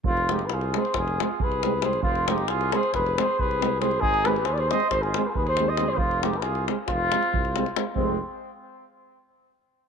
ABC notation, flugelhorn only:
X:1
M:9/8
L:1/16
Q:3/8=91
K:Fm
V:1 name="Flugelhorn"
F2 G3/2 =B/2 A2 c2 A2 A2 B4 c2 | F2 G2 A2 c2 =B2 c2 B4 c2 | A2 =B2 c/2 =d/2 c e2 c A2 B/2 A/2 B c2 e2 c | F2 G3/2 =B/2 A2 z2 F8 z2 |
C2 z16 |]